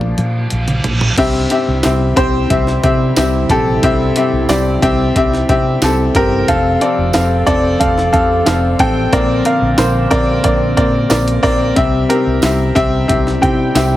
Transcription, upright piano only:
0.00 1.20 F3 soft
0.00 1.19 A#3 soft
0.00 1.19 D4 medium
0.00 0.47 D5 medium
1.18 2.13 G2 medium
1.18 1.41 C4 loud
1.18 1.42 G4 medium
1.18 1.41 E5 loud
1.51 1.74 C4 medium
1.51 1.74 G4 medium
1.51 1.75 E5 medium
1.84 2.07 C4 medium
1.84 2.08 G4 medium
1.84 2.08 E5 medium
2.16 2.40 C4 loud
2.16 2.40 G4 loud
2.16 2.40 C5 loud
2.50 2.74 C4 medium
2.50 2.73 G4 medium
2.50 2.74 E5 medium
2.83 3.07 C4 medium
2.83 3.07 G4 medium
2.83 3.07 E5 medium
3.17 3.40 C4 medium
3.17 3.40 G4 medium
3.17 3.40 E5 medium
3.50 3.74 C4 loud
3.50 3.73 G4 loud
3.50 3.73 A4 loud
3.83 4.78 G2 medium
3.83 4.06 C4 loud
3.83 4.06 G4 loud
3.83 4.07 E5 loud
4.17 4.40 C4 medium
4.17 4.40 G4 medium
4.17 4.40 E5 medium
4.49 4.72 C4 medium
4.49 4.73 G4 medium
4.49 4.72 D5 medium
4.82 5.06 C4 loud
4.82 5.06 G4 loud
4.82 5.06 E5 loud
5.16 5.39 C4 medium
5.16 5.39 G4 medium
5.16 5.39 E5 loud
5.49 5.72 C4 medium
5.49 5.72 G4 medium
5.49 5.72 E5 loud
5.83 6.06 C4 medium
5.83 6.06 G4 medium
5.83 6.06 A4 medium
6.16 6.38 C4 loud
6.16 6.39 G4 loud
6.16 6.39 A#4 loud
6.48 7.43 C3 medium
6.48 6.71 C4 loud
6.48 6.71 A4 loud
6.48 6.71 F5 loud
6.81 7.04 C4 medium
6.81 7.04 A4 medium
6.81 7.05 D5 medium
7.14 7.37 C4 medium
7.14 7.37 A4 medium
7.14 7.37 F5 medium
7.47 7.70 C4 loud
7.47 7.70 A4 loud
7.47 7.70 D5 loud
7.79 8.03 C4 medium
7.79 8.03 A4 medium
7.79 8.03 F5 medium
8.12 8.36 C4 medium
8.12 8.36 A4 medium
8.12 8.36 F5 loud
8.46 8.69 C4 medium
8.46 8.70 A4 medium
8.46 8.70 F5 medium
8.80 9.03 C4 loud
8.80 9.03 A4 loud
8.80 9.03 G5 loud
9.13 10.08 A#2 medium
9.13 10.08 F3 medium
9.13 9.36 C4 loud
9.13 9.36 A#4 loud
9.13 9.36 D5 loud
9.45 9.69 C4 medium
9.45 9.69 A#4 medium
9.45 9.69 F5 medium
9.77 10.01 C4 medium
9.77 10.02 A#4 medium
9.77 10.02 C5 medium
10.11 10.35 C4 loud
10.11 10.35 A#4 loud
10.11 10.35 D5 loud
10.44 10.68 C4 medium
10.44 10.68 A#4 medium
10.44 10.68 D5 medium
10.77 11.01 C4 medium
10.77 11.01 A#4 medium
10.77 11.01 D5 medium
11.09 11.34 C4 medium
11.09 11.34 A#4 medium
11.09 11.34 D5 medium
11.43 11.67 C4 loud
11.43 11.67 A#4 medium
11.43 11.67 D5 loud
11.76 12.72 C3 medium
11.76 12.72 G3 medium
11.76 12.00 C4 loud
11.76 12.00 G4 medium
11.76 12.00 E5 loud
12.09 12.33 C4 medium
12.09 12.33 G4 medium
12.09 12.33 A#4 loud
12.43 12.67 C4 medium
12.43 12.67 G4 medium
12.43 12.67 E5 medium
12.75 12.99 C4 loud
12.75 12.99 G4 loud
12.75 13.00 E5 loud
13.08 13.32 C4 medium
13.08 13.32 G4 medium
13.08 13.32 E5 medium
13.41 13.66 C4 medium
13.41 13.66 G4 medium
13.41 13.66 G5 medium
13.75 13.97 C4 medium
13.75 13.97 G4 medium
13.75 13.97 E5 medium

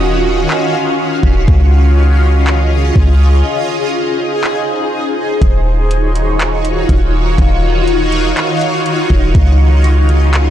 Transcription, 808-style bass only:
0.00 0.46 D#1 loud
1.23 1.47 D#1 loud
1.48 2.92 C#2 loud
2.96 3.43 C#2 loud
5.42 6.85 D#1 loud
6.89 7.36 D#1 loud
7.38 8.33 D#1 loud
9.10 9.34 D#1 loud
9.35 10.50 C#2 loud

